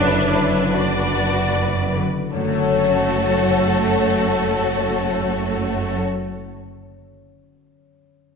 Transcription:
Already playing: F#1 F#2 D3 F#3 D4 F#4 B4 C#5
0.00 B3 E4
0.36 B4
0.74 F#4 B4 D5
1.13 B4
1.53 B3
1.94 D3
2.33 F#1 F#2 A3 F#4 A4 C#5
2.41 F#3
2.47 C#4
2.55 A4
2.62 C#5

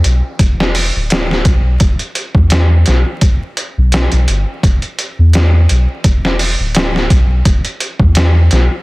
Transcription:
0.04 B1, closed hi-hat
0.39 E1, kick, closed hi-hat
0.60 snare
0.75 open hi-hat
0.95 D1
1.10 snare, closed hi-hat
1.31 snare
1.45 B1, kick, closed hi-hat
1.80 E1, kick, closed hi-hat
1.99 closed hi-hat
2.15 closed hi-hat
2.35 E2, kick
2.50 snare, closed hi-hat
2.86 B1, snare, closed hi-hat
3.21 kick, closed hi-hat
3.57 closed hi-hat
3.77 B1
3.92 snare, closed hi-hat
4.12 B1, closed hi-hat
4.28 G1, closed hi-hat
4.63 E1, kick, closed hi-hat
4.82 closed hi-hat
4.99 closed hi-hat
5.18 E2
5.33 snare, closed hi-hat
5.69 B1, closed hi-hat
6.04 E1, kick, closed hi-hat
6.25 snare
6.39 open hi-hat
6.59 D1
6.75 snare, closed hi-hat
6.96 snare
7.10 B1, kick, closed hi-hat
7.45 E1, kick, closed hi-hat
7.65 closed hi-hat
7.80 closed hi-hat
8.00 E2, kick
8.15 snare, closed hi-hat
8.51 B1, snare, closed hi-hat

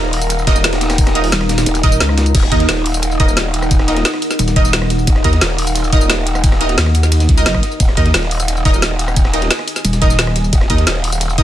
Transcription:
Already playing: D#1 D#4 A#4 D#5 F5 A#5
0.04 snare
0.13 closed hi-hat, open hi-hat, tambourine
0.22 closed hi-hat, tambourine
0.30 closed hi-hat, ride, tambourine
0.39 tambourine
0.47 D#4 A#4 D#5, kick, snare, closed hi-hat, ride
0.56 snare, tambourine
0.64 snare, closed hi-hat, ride, tambourine
0.73 snare, ride
0.81 snare, closed hi-hat, ride, tambourine
0.90 cross-stick, snare, ride, tambourine
0.98 kick, closed hi-hat, open hi-hat, tambourine
1.07 cross-stick, snare, ride
1.15 D#4 A#4 D#5, snare, closed hi-hat
1.24 closed hi-hat, open hi-hat
1.32 D#1, snare, closed hi-hat, ride, tambourine
1.41 cross-stick, snare
1.49 snare, open hi-hat, ride, tambourine
1.58 snare, closed hi-hat, ride, tambourine
1.66 D#1, closed hi-hat, ride, tambourine
1.75 snare, closed hi-hat, tambourine
1.83 D#1 D#4 A#4 D#5, kick, snare, closed hi-hat, ride
1.92 tambourine
2.00 C#2, snare, closed hi-hat, ride, tambourine
2.09 cross-stick, snare
2.18 snare, closed hi-hat, ride, tambourine
2.26 closed hi-hat, tambourine
2.35 D#1 D#5 F#5, kick, closed hi-hat, crash, ride, tambourine
2.43 cross-stick, snare
2.52 D#2 D#4 A#4 D#5, kick, closed hi-hat, ride
2.60 snare, closed hi-hat
2.69 D#1, snare, closed hi-hat, ride, tambourine
2.77 snare
2.86 closed hi-hat, open hi-hat, tambourine
2.94 closed hi-hat, tambourine
3.03 closed hi-hat, ride, tambourine
3.11 tambourine
3.20 D#4 A#4 D#5, kick, closed hi-hat, ride
3.28 tambourine
3.37 snare, closed hi-hat, ride, tambourine
3.54 closed hi-hat, ride, tambourine
3.62 cross-stick, tambourine
3.71 kick, closed hi-hat, ride, tambourine
3.79 cross-stick, snare
3.88 D#4 A#4 D#5, snare, closed hi-hat, ride
3.97 snare, closed hi-hat
4.05 snare, closed hi-hat, ride, tambourine
4.14 cross-stick, snare
4.22 open hi-hat, ride, tambourine
4.31 snare, closed hi-hat, tambourine
4.39 D#1, closed hi-hat, ride, tambourine
4.48 snare, closed hi-hat, tambourine
4.56 D#4 A#4 D#5, kick, closed hi-hat, ride
4.65 snare, tambourine
4.73 snare, closed hi-hat, ride, tambourine
4.82 cross-stick, snare
4.90 snare, closed hi-hat, ride, tambourine
4.99 tambourine
5.07 D#1, kick, closed hi-hat, ride, tambourine
5.16 cross-stick, snare
5.24 D#2 D#4 A#4 D#5, kick, closed hi-hat, ride
5.33 snare, closed hi-hat
5.41 D#1, snare, closed hi-hat, ride, tambourine
5.50 snare
5.58 closed hi-hat, open hi-hat, tambourine
5.67 closed hi-hat, tambourine
5.75 closed hi-hat, ride, tambourine
5.84 tambourine
5.93 D#4 A#4 D#5, kick, closed hi-hat, ride
6.01 tambourine
6.10 snare, closed hi-hat, ride, tambourine
6.27 closed hi-hat, ride, tambourine
6.35 cross-stick, tambourine
6.44 kick, closed hi-hat, ride, tambourine
6.52 cross-stick, snare
6.61 D#4 A#4 D#5, snare, closed hi-hat, ride
6.69 snare, closed hi-hat
6.78 D#2, snare, closed hi-hat, ride, tambourine
6.86 cross-stick, snare
6.95 open hi-hat, ride, tambourine
7.03 snare, closed hi-hat, tambourine
7.12 closed hi-hat, ride, tambourine
7.20 snare, closed hi-hat, tambourine
7.29 C#2, kick, snare, closed hi-hat, ride
7.37 D#4 A#4 D#5, tambourine
7.46 F#1 D#4 A#4 D#5, snare, closed hi-hat, ride, tambourine
7.54 kick, cross-stick, snare
7.63 snare, closed hi-hat, ride, tambourine
7.71 tambourine
7.80 D#1 G#5, kick, closed hi-hat, ride, tambourine
7.89 cross-stick, snare
7.97 D#2 D#4 A#4 D#5, kick, closed hi-hat, ride
8.06 snare, closed hi-hat
8.14 D#1, snare, closed hi-hat, ride, tambourine
8.23 snare
8.31 closed hi-hat, open hi-hat, tambourine
8.40 closed hi-hat, tambourine
8.48 closed hi-hat, ride, tambourine
8.57 tambourine
8.65 D#4 A#4 D#5, kick, closed hi-hat, ride
8.74 tambourine
8.82 snare, closed hi-hat, ride, tambourine
8.99 closed hi-hat, ride, tambourine
9.08 cross-stick, tambourine
9.16 kick, closed hi-hat, ride, tambourine
9.25 cross-stick, snare
9.33 D#4 A#4 D#5, snare, closed hi-hat, ride
9.42 snare, closed hi-hat
9.51 snare, closed hi-hat, ride, tambourine
9.59 cross-stick, snare
9.68 open hi-hat, ride, tambourine
9.76 snare, closed hi-hat, tambourine
9.85 D#1, closed hi-hat, ride, tambourine
9.93 snare, closed hi-hat, tambourine
10.02 D#4 A#4 D#5, kick, closed hi-hat, ride
10.10 snare, tambourine
10.19 snare, closed hi-hat, ride, tambourine
10.27 cross-stick, snare
10.36 snare, closed hi-hat, ride, tambourine
10.44 tambourine
10.53 D#1, kick, closed hi-hat, ride, tambourine
10.61 cross-stick, snare
10.70 D#2 D#4 A#4 D#5, kick, closed hi-hat, ride
10.78 snare, closed hi-hat
10.87 D#1, snare, closed hi-hat, ride, tambourine
10.95 snare
11.04 closed hi-hat, open hi-hat, tambourine
11.12 closed hi-hat, tambourine
11.21 closed hi-hat, ride, tambourine
11.29 tambourine
11.38 D#4 A#4 D#5, kick, closed hi-hat, ride

